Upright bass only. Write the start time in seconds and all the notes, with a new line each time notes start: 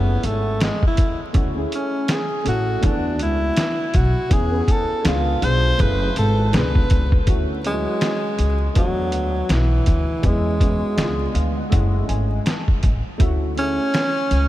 Already playing: F#1
0.24 G#1
1.35 D2
2.46 A1
2.84 E2
3.19 C#2
3.95 B1
4.31 E2
5.05 C#2
5.42 B1
5.80 F#1
6.17 G#1
6.54 C#2
6.91 C#2
7.28 D2
8.39 C#2
8.76 E2
9.13 D2
9.49 B1
9.88 D2
10.24 E2
10.97 C#2
11.35 D2
11.73 F#1
12.09 G#1
12.84 A1
13.20 D2
14.31 C#2